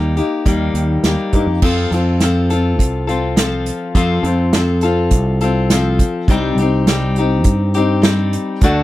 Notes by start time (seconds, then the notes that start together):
Already playing: D#2 G3 A#3 D#4 G4
0.17 A#3 D#4 G4, closed hi-hat
0.45 D#2 D#3 G3 A#3 D#4 G4, kick, closed hi-hat
0.74 D#2, closed hi-hat
1.04 D#2 G3 A#3 D#4 G4, snare, closed hi-hat
1.33 G2 A#3 D#4 G4, kick, closed hi-hat
1.46 F2
1.62 F2 F3 C4 F4 A4, kick, crash
1.91 F2 C4 F4 A4, closed hi-hat
2.20 F3 C4 F4 A4, snare, closed hi-hat
2.50 C4 F4 A4, closed hi-hat
2.79 C2, kick, closed hi-hat
3.07 C4 F4 A4, closed hi-hat
3.36 F3 C4 F4 A4, snare, closed hi-hat
3.66 closed hi-hat
3.95 F2 F3 C4 F4 A4, kick, closed hi-hat
4.23 F2 C4 F4 A4, closed hi-hat
4.53 F3 C4 F4 A4, snare, closed hi-hat
4.81 F4 A4, closed hi-hat
4.85 C4
5.11 C2, kick, closed hi-hat
5.41 C4 F4 A4, closed hi-hat
5.70 F3 C4 F4 A4, snare, closed hi-hat
5.99 kick, closed hi-hat
6.28 C2 C3 G3 C4 D#4 G4, kick, closed hi-hat
6.56 C2 G4, closed hi-hat
6.60 C4 D#4
6.87 G3 C4 D#4 G4, snare, closed hi-hat
7.16 D#4 G4, closed hi-hat
7.21 C4
7.44 G2, kick, closed hi-hat
7.74 C4 D#4 G4, closed hi-hat
8.02 G3 C4 D#4 G4, snare, closed hi-hat
8.33 closed hi-hat
8.61 D2 D3 A3 D4 F#4 A4, kick, closed hi-hat